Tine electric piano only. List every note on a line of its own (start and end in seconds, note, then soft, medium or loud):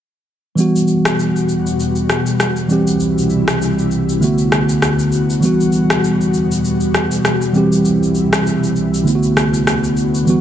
0.55 2.65 E3 medium
0.55 2.66 G3 medium
0.55 2.66 B3 medium
0.60 2.67 F#4 medium
2.68 4.17 E3 medium
2.68 4.18 G3 medium
2.68 4.19 C4 medium
2.72 4.20 G4 medium
4.19 5.39 D3 medium
4.19 5.40 A3 medium
4.19 5.41 B3 medium
4.24 5.42 F#4 medium
5.40 7.50 E3 medium
5.40 7.50 G3 medium
5.40 7.51 B3 medium
5.45 7.52 F#4 medium
7.52 9.02 E3 medium
7.52 9.03 G3 medium
7.52 9.04 C4 medium
7.57 9.05 G4 medium
9.04 10.24 D3 medium
9.04 10.25 A3 medium
9.04 10.25 B3 medium
9.09 9.15 E4 medium
9.15 10.29 F#4 medium
10.25 10.41 E3 medium
10.25 10.41 G3 medium
10.25 10.41 B3 medium
10.30 10.41 F#4 medium